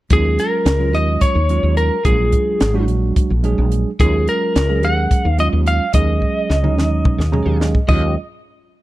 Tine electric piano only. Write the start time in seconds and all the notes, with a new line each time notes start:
0.10 F#3 G#3 C#4 F4
0.80 F#3 G#3 C#4 F4
1.50 F#3 G#3 C#4 F4
2.05 F#3 G#3 D4 F4
2.74 F#3 G#3 D4 F#4
3.44 F#3 G#3 D4 G#4
4.00 F#3 G#3 C#4 F4
4.69 F#3 G#3 C#4 G#4
5.38 F#3 G#3 C#4 F4
5.94 F#3 G#3 C#4 G#4
6.63 F#3 G#3 C#4 D#4
7.32 F#3 G#3 C#4 G#4 A#5
7.60 D#5
7.88 F#3 G#3 C#4 F4